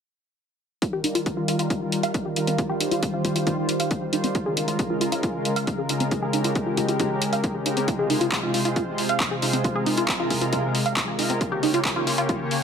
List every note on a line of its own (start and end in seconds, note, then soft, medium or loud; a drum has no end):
0.82 0.97 D#3 medium
0.82 0.97 G3 medium
0.82 0.97 F4 medium
0.82 0.87 F4 medium
0.82 0.97 A#4 medium
0.82 kick loud
0.82 closed hi-hat medium
0.93 1.01 G4 loud
1.04 1.20 D#3 medium
1.04 1.20 G3 medium
1.04 1.12 D#4 medium
1.04 1.20 F4 medium
1.04 1.20 A#4 medium
1.04 closed hi-hat medium
1.15 1.20 F4 loud
1.15 closed hi-hat medium
1.26 1.42 D#3 medium
1.26 1.42 G3 medium
1.26 1.42 F4 medium
1.26 1.42 A#4 medium
1.26 kick loud
1.26 closed hi-hat medium
1.37 1.45 F4 loud
1.48 1.56 D#3 medium
1.48 1.56 G3 medium
1.48 1.56 F4 medium
1.48 1.56 A#4 medium
1.48 closed hi-hat medium
1.59 1.67 D#3 medium
1.59 1.67 G3 medium
1.59 1.62 F4 loud
1.59 1.67 F4 medium
1.59 1.67 A#4 medium
1.59 closed hi-hat medium
1.70 1.78 D#3 medium
1.70 1.78 G3 medium
1.70 1.78 F4 medium
1.70 1.76 F4 medium
1.70 1.78 A#4 medium
1.70 kick loud
1.70 closed hi-hat medium
1.81 1.97 D#3 medium
1.81 1.97 G3 medium
1.81 1.97 F4 medium
1.81 1.97 A#4 medium
1.92 closed hi-hat medium
2.03 2.11 F5 loud
2.03 closed hi-hat medium
2.14 2.30 D#3 medium
2.14 2.30 G3 medium
2.14 2.30 F4 medium
2.14 2.30 A#4 medium
2.14 kick loud
2.14 closed hi-hat medium
2.25 2.29 G4 medium
2.36 2.52 D#3 medium
2.36 2.52 G3 medium
2.36 2.40 D#4 medium
2.36 2.52 F4 medium
2.36 2.52 A#4 medium
2.36 closed hi-hat medium
2.47 2.51 C4 medium
2.47 closed hi-hat medium
2.58 2.74 D#3 medium
2.58 2.74 G3 medium
2.58 2.74 F4 medium
2.58 2.64 F4 medium
2.58 2.74 C5 medium
2.58 kick loud
2.58 closed hi-hat medium
2.69 2.78 G4 loud
2.80 2.96 D#3 medium
2.80 2.96 G3 medium
2.80 2.89 D#4 medium
2.80 2.96 F4 medium
2.80 2.96 C5 medium
2.80 closed hi-hat medium
2.91 2.97 F4 loud
2.91 closed hi-hat medium
3.02 3.18 D#3 medium
3.02 3.18 G3 medium
3.02 3.18 F4 medium
3.02 3.18 C5 medium
3.02 kick loud
3.02 closed hi-hat medium
3.14 3.22 F4 loud
3.24 3.32 D#3 medium
3.24 3.32 G3 medium
3.24 3.32 F4 medium
3.24 3.33 F4 medium
3.24 3.32 C5 medium
3.24 kick medium
3.24 closed hi-hat medium
3.36 3.43 D#3 medium
3.36 3.43 G3 medium
3.36 3.43 F4 medium
3.36 3.39 F4 medium
3.36 3.43 C5 medium
3.36 closed hi-hat medium
3.47 3.54 D#3 medium
3.47 3.54 G3 medium
3.47 3.54 F4 medium
3.47 3.52 F4 medium
3.47 3.54 C5 medium
3.47 kick loud
3.47 closed hi-hat medium
3.57 3.73 D#3 medium
3.57 3.73 G3 medium
3.57 3.73 F4 medium
3.57 3.73 C5 medium
3.69 closed hi-hat medium
3.80 3.88 F5 loud
3.80 closed hi-hat medium
3.91 4.06 D#3 medium
3.91 4.06 G3 medium
3.91 4.06 F4 medium
3.91 4.06 C5 medium
3.91 kick loud
3.91 closed hi-hat medium
4.02 4.05 G4 medium
4.13 4.28 D#3 medium
4.13 4.28 G3 medium
4.13 4.16 D#4 medium
4.13 4.28 F4 medium
4.13 4.28 C5 medium
4.13 closed hi-hat medium
4.24 4.27 C4 medium
4.24 closed hi-hat medium
4.35 4.50 C#3 medium
4.35 4.50 G#3 medium
4.35 4.50 F4 medium
4.35 4.40 F4 medium
4.35 4.50 A#4 medium
4.35 kick loud
4.35 closed hi-hat medium
4.46 4.54 G#4 loud
4.57 4.72 C#3 medium
4.57 4.73 G#3 medium
4.57 4.65 D#4 medium
4.57 4.73 F4 medium
4.57 4.73 A#4 medium
4.57 closed hi-hat medium
4.68 4.73 F4 loud
4.68 closed hi-hat medium
4.79 4.95 C#3 medium
4.79 4.95 G#3 medium
4.79 4.95 F4 medium
4.79 4.95 A#4 medium
4.79 kick loud
4.79 closed hi-hat medium
4.90 4.98 F4 loud
5.01 5.09 C#3 medium
5.01 5.09 G#3 medium
5.01 5.09 F4 loud
5.01 5.09 F4 medium
5.01 5.09 A#4 medium
5.01 closed hi-hat medium
5.12 5.20 C#3 medium
5.12 5.20 G#3 medium
5.12 5.15 F4 loud
5.12 5.20 F4 medium
5.12 5.20 A#4 medium
5.12 closed hi-hat medium
5.23 5.31 C#3 medium
5.23 5.31 G#3 medium
5.23 5.29 F4 medium
5.23 5.31 F4 medium
5.23 5.31 A#4 medium
5.23 kick loud
5.23 closed hi-hat medium
5.34 5.50 C#3 medium
5.34 5.50 G#3 medium
5.34 5.50 F4 medium
5.34 5.50 A#4 medium
5.45 closed hi-hat medium
5.56 5.64 F5 loud
5.56 closed hi-hat medium
5.67 5.83 C#3 medium
5.67 5.83 G#3 medium
5.67 5.83 F4 medium
5.67 5.83 A#4 medium
5.67 kick loud
5.67 closed hi-hat medium
5.78 5.82 G#4 medium
5.89 6.05 C#3 medium
5.89 6.05 G#3 medium
5.89 5.93 D#4 medium
5.89 6.05 F4 medium
5.89 6.05 A#4 medium
5.89 closed hi-hat medium
6.00 6.04 C4 medium
6.00 closed hi-hat medium
6.11 6.27 C#3 medium
6.11 6.27 G#3 medium
6.11 6.17 F4 medium
6.11 6.27 G4 medium
6.11 6.27 A#4 medium
6.11 kick loud
6.11 closed hi-hat medium
6.22 6.31 G#4 loud
6.33 6.49 C#3 medium
6.33 6.49 G#3 medium
6.33 6.42 D#4 medium
6.33 6.49 G4 medium
6.33 6.49 A#4 medium
6.33 closed hi-hat medium
6.44 6.50 F4 loud
6.44 closed hi-hat medium
6.55 6.71 C#3 medium
6.55 6.71 G#3 medium
6.55 6.71 G4 medium
6.55 6.71 A#4 medium
6.55 kick loud
6.55 closed hi-hat medium
6.67 6.75 F4 loud
6.77 6.85 C#3 medium
6.77 6.85 G#3 medium
6.77 6.86 F4 medium
6.77 6.85 G4 medium
6.77 6.85 A#4 medium
6.77 kick medium
6.77 closed hi-hat medium
6.88 6.96 C#3 medium
6.88 6.96 G#3 medium
6.88 6.92 F4 loud
6.88 6.96 G4 medium
6.88 6.96 A#4 medium
6.88 closed hi-hat medium
7.00 7.07 C#3 medium
7.00 7.07 G#3 medium
7.00 7.05 F4 medium
7.00 7.07 G4 medium
7.00 7.07 A#4 medium
7.00 kick loud
7.00 closed hi-hat medium
7.11 7.26 C#3 medium
7.11 7.26 G#3 medium
7.11 7.26 G4 medium
7.11 7.26 A#4 medium
7.22 closed hi-hat medium
7.33 7.41 F5 loud
7.33 closed hi-hat medium
7.44 7.59 C#3 medium
7.44 7.59 G#3 medium
7.44 7.59 G4 medium
7.44 7.59 A#4 medium
7.44 kick loud
7.44 closed hi-hat medium
7.55 7.58 G#4 medium
7.66 7.81 C#3 medium
7.66 7.81 G#3 medium
7.66 7.69 D#4 medium
7.66 7.81 G4 medium
7.66 7.81 A#4 medium
7.66 closed hi-hat medium
7.77 7.80 C4 medium
7.77 closed hi-hat medium
7.88 8.03 C3 medium
7.88 8.03 G#3 medium
7.88 7.93 F4 medium
7.88 8.03 F4 medium
7.88 8.03 C5 medium
7.88 kick loud
7.88 closed hi-hat medium
7.99 8.07 G#4 loud
8.10 8.25 C3 medium
8.10 8.25 G#3 medium
8.10 8.18 D#4 medium
8.10 8.25 F4 medium
8.10 8.25 C5 medium
8.10 open hi-hat medium
8.21 8.26 F4 loud
8.21 closed hi-hat medium
8.32 8.47 C3 medium
8.32 8.47 G#3 medium
8.32 8.47 F4 medium
8.32 8.47 C5 medium
8.32 kick loud
8.32 clap loud
8.32 closed hi-hat medium
8.43 8.51 F4 loud
8.54 8.62 C3 medium
8.54 8.62 G#3 medium
8.54 8.62 F4 medium
8.54 8.59 F4 medium
8.54 8.62 C5 medium
8.54 open hi-hat loud
8.65 8.73 C3 medium
8.65 8.73 G#3 medium
8.65 8.73 F4 medium
8.65 8.68 F4 loud
8.65 8.73 C5 medium
8.65 closed hi-hat medium
8.76 8.84 C3 medium
8.76 8.84 G#3 medium
8.76 8.84 F4 medium
8.76 8.82 F4 medium
8.76 8.84 C5 medium
8.76 kick loud
8.76 closed hi-hat medium
8.87 9.03 C3 medium
8.87 9.03 G#3 medium
8.87 9.03 F4 medium
8.87 9.03 C5 medium
8.98 open hi-hat medium
9.09 9.17 F5 loud
9.09 closed hi-hat medium
9.20 9.36 C3 medium
9.20 9.36 G#3 medium
9.20 9.36 F4 medium
9.20 9.36 C5 medium
9.20 kick loud
9.20 clap loud
9.20 closed hi-hat medium
9.31 9.34 G#4 medium
9.42 9.58 C3 medium
9.42 9.58 G#3 medium
9.42 9.46 D#4 medium
9.42 9.58 F4 medium
9.42 9.58 C5 medium
9.42 open hi-hat loud
9.53 9.57 C4 medium
9.53 closed hi-hat medium
9.64 9.80 C3 medium
9.64 9.80 G#3 medium
9.64 9.70 F4 medium
9.64 9.80 F4 medium
9.64 9.80 A#4 medium
9.64 kick loud
9.64 closed hi-hat medium
9.75 9.83 G#4 loud
9.86 10.02 C3 medium
9.86 10.02 G#3 medium
9.86 9.95 D#4 medium
9.86 10.02 F4 medium
9.86 10.02 A#4 medium
9.86 open hi-hat loud
9.97 10.03 F4 loud
9.97 closed hi-hat medium
10.08 10.24 C3 medium
10.08 10.24 G#3 medium
10.08 10.24 F4 medium
10.08 10.24 A#4 medium
10.08 kick loud
10.08 clap loud
10.08 closed hi-hat medium
10.20 10.28 F4 loud
10.30 10.38 C3 medium
10.30 10.38 G#3 medium
10.30 10.38 F4 medium
10.30 10.36 F4 medium
10.30 10.38 A#4 medium
10.30 kick medium
10.30 open hi-hat medium
10.41 10.49 C3 medium
10.41 10.49 G#3 medium
10.41 10.45 F4 loud
10.41 10.49 F4 medium
10.41 10.49 A#4 medium
10.41 closed hi-hat medium
10.53 10.60 C3 medium
10.53 10.60 G#3 medium
10.53 10.60 F4 medium
10.53 10.58 F4 medium
10.53 10.60 A#4 medium
10.53 kick loud
10.53 closed hi-hat medium
10.64 10.79 C3 medium
10.64 10.79 G#3 medium
10.64 10.79 F4 medium
10.64 10.79 A#4 medium
10.75 open hi-hat medium
10.86 10.94 F5 loud
10.86 closed hi-hat medium
10.97 11.12 C3 medium
10.97 11.12 G#3 medium
10.97 11.12 F4 medium
10.97 11.12 A#4 medium
10.97 kick loud
10.97 clap loud
10.97 closed hi-hat medium
11.08 11.11 G#4 medium
11.19 11.34 C3 medium
11.19 11.34 G#3 medium
11.19 11.22 D#4 medium
11.19 11.34 F4 medium
11.19 11.34 A#4 medium
11.19 open hi-hat medium
11.30 11.33 C4 medium
11.30 closed hi-hat medium
11.41 11.56 C#3 medium
11.41 11.56 A#3 medium
11.41 11.46 F4 medium
11.41 11.56 G4 medium
11.41 11.56 C#5 medium
11.41 kick loud
11.41 closed hi-hat medium
11.52 11.60 G4 loud
11.63 11.78 C#3 medium
11.63 11.78 A#3 medium
11.63 11.71 D#4 medium
11.63 11.78 G4 medium
11.63 11.78 C#5 medium
11.63 open hi-hat medium
11.74 11.79 F4 loud
11.74 closed hi-hat medium
11.85 12.00 C#3 medium
11.85 12.00 A#3 medium
11.85 12.00 G4 medium
11.85 12.00 C#5 medium
11.85 kick loud
11.85 clap loud
11.85 closed hi-hat medium
11.96 12.04 F4 loud
12.07 12.15 C#3 medium
12.07 12.15 A#3 medium
12.07 12.12 F4 medium
12.07 12.15 G4 medium
12.07 12.15 C#5 medium
12.07 open hi-hat medium
12.18 12.26 C#3 medium
12.18 12.26 A#3 medium
12.18 12.21 F4 loud
12.18 12.26 G4 medium
12.18 12.26 C#5 medium
12.18 closed hi-hat medium
12.29 12.37 C#3 medium
12.29 12.37 A#3 medium
12.29 12.34 F4 medium
12.29 12.37 G4 medium
12.29 12.37 C#5 medium
12.29 kick loud
12.29 closed hi-hat medium
12.40 12.55 C#3 medium
12.40 12.56 A#3 medium
12.40 12.56 G4 medium
12.40 12.55 C#5 medium
12.51 open hi-hat medium